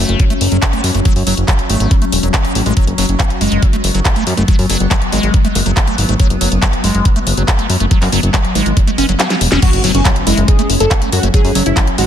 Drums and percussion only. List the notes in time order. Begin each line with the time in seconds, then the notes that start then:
0.09 closed hi-hat
0.20 kick, closed hi-hat
0.30 closed hi-hat
0.41 open hi-hat
0.52 closed hi-hat
0.62 kick, clap, closed hi-hat
0.73 closed hi-hat
0.84 open hi-hat
0.95 closed hi-hat
1.05 kick, closed hi-hat
1.16 open hi-hat
1.27 open hi-hat
1.37 closed hi-hat
1.48 kick, clap, closed hi-hat
1.59 closed hi-hat
1.70 open hi-hat
1.80 closed hi-hat
1.91 kick, closed hi-hat
2.02 closed hi-hat
2.12 open hi-hat
2.23 closed hi-hat
2.34 kick, clap, closed hi-hat
2.45 closed hi-hat
2.55 open hi-hat
2.66 closed hi-hat
2.77 kick, closed hi-hat
2.87 closed hi-hat
2.98 open hi-hat
3.09 closed hi-hat
3.20 kick, clap, closed hi-hat
3.30 closed hi-hat
3.41 open hi-hat
3.52 closed hi-hat
3.62 kick, closed hi-hat
3.73 closed hi-hat
3.84 open hi-hat
3.95 closed hi-hat
4.05 kick, clap, closed hi-hat
4.16 closed hi-hat
4.27 open hi-hat
4.37 closed hi-hat
4.48 kick, closed hi-hat
4.59 open hi-hat
4.70 open hi-hat
4.80 closed hi-hat
4.91 kick, clap, closed hi-hat
5.02 closed hi-hat
5.12 open hi-hat
5.23 closed hi-hat
5.34 kick, closed hi-hat
5.45 closed hi-hat
5.55 open hi-hat
5.66 closed hi-hat
5.77 kick, clap, closed hi-hat
5.87 closed hi-hat
5.98 open hi-hat
6.09 closed hi-hat
6.20 kick, closed hi-hat
6.30 closed hi-hat
6.41 open hi-hat
6.52 closed hi-hat
6.62 kick, clap, closed hi-hat
6.73 closed hi-hat
6.84 open hi-hat
6.95 closed hi-hat
7.05 kick, closed hi-hat
7.16 closed hi-hat
7.27 open hi-hat
7.37 closed hi-hat
7.48 kick, clap, closed hi-hat
7.59 closed hi-hat
7.70 open hi-hat
7.80 closed hi-hat
7.91 kick, closed hi-hat
8.02 clap, open hi-hat
8.12 open hi-hat
8.23 closed hi-hat
8.34 kick, clap, closed hi-hat
8.45 closed hi-hat
8.55 open hi-hat
8.66 closed hi-hat
8.77 kick, closed hi-hat
8.87 closed hi-hat
8.98 open hi-hat
9.09 closed hi-hat
9.20 snare, clap, closed hi-hat
9.30 snare, closed hi-hat
9.41 open hi-hat
9.52 snare, closed hi-hat
9.62 kick, closed hi-hat, crash
9.73 closed hi-hat
9.84 open hi-hat
9.95 closed hi-hat
10.05 kick, clap, closed hi-hat
10.16 closed hi-hat
10.27 open hi-hat
10.37 closed hi-hat
10.48 kick, closed hi-hat
10.59 closed hi-hat
10.70 open hi-hat
10.80 closed hi-hat
10.91 kick, clap, closed hi-hat
11.02 closed hi-hat
11.12 open hi-hat
11.23 closed hi-hat
11.34 kick, closed hi-hat
11.45 open hi-hat
11.55 open hi-hat
11.66 closed hi-hat
11.77 kick, clap, closed hi-hat
11.87 closed hi-hat
11.98 open hi-hat